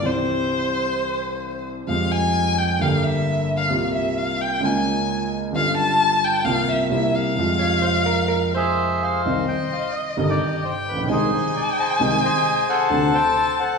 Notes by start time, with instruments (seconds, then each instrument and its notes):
0.01 grand piano C2 C3 E3 G3 C4 G4
0.05 violin C5
1.87 grand piano F2 F3 G3 G#3 C4, violin F5
2.11 violin G#5
2.58 violin G5
2.79 grand piano G1 G2 D3 G3 A#3 G4, violin F5
3.03 violin E5
3.57 violin F5
3.68 grand piano C2 C3 G3 A#3
3.73 grand piano F4
3.95 violin E5
4.18 violin F5
4.41 violin G5
4.60 grand piano C#2 C#3 G#3 A#3
4.64 grand piano F4, violin G#5
5.51 grand piano G1 G2 D3 G3 B3
5.55 grand piano F4, violin F5
5.77 violin A5
6.24 violin G5
6.44 grand piano C2 C3 G3 A#3 F4, violin F5
6.69 violin E5
6.89 grand piano C2 C3 G3 A#3 E4, violin E5
7.14 violin F5
7.35 grand piano F2 C3 F3 G#3
7.40 grand piano F4
7.59 hollow-body jazz guitar C#5
7.82 hollow-body jazz guitar C5
8.06 hollow-body jazz guitar A#4
8.28 hollow-body jazz guitar A#4
8.55 bandoneon G#4 C5 E5, hollow-body jazz guitar C5
9.02 bandoneon C5 F5
9.25 grand piano C2 C3 D#3 G3 D#4, violin D#5
9.48 bandoneon G5
9.73 bandoneon F5
9.94 bandoneon D#5
10.17 grand piano G1 G2 C3 D#3 G3 D#4
10.23 bandoneon D#5
10.29 bandoneon G4 D5
10.62 bandoneon C5, violin G5
10.88 grand piano A1, bandoneon B4
10.97 grand piano A#1
11.03 grand piano B1
11.09 grand piano C2 C3 D#3 G#3 D#4, bandoneon D#4 G#4 C5, violin G#5
11.34 bandoneon C5
11.56 bandoneon D5
11.79 bandoneon G#4 C5 D#5
12.00 grand piano C2 C3 D#3 G#3 D#4
12.24 bandoneon G#4 C5 D#5
12.69 bandoneon A4 C5 F#5
12.89 grand piano D2 C3 D3 F#3 A3 D4, violin A5
13.14 bandoneon C5 G5
13.59 bandoneon A4 C5 F#5